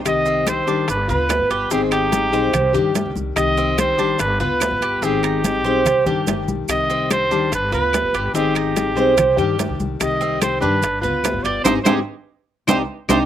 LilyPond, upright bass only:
\new Staff \with { instrumentName = "Upright bass" } { \clef bass \time 4/4 \key c \minor \tempo 4 = 145 c,4. aes,,8 g,,8 d,8. g,,16 g,,8 | aes,,4. b,,8 c,8 g,8. c,16 c,8 | c,4. aes,,8 g,,8 d,8. g,,16 g,,8 | aes,,4. b,,8 c,8 g,8 g,,8 b,,8 |
c,4. d,8 g,,8 d,8. g,,16 g,,8 | aes,,4. b,,8 c,8 g,8. c,16 c,8 | c,4. g,8 g,,8 d,8. g,,16 g,,8 | aes,,8 aes,,8 r4. c,8 r8 c,8 | }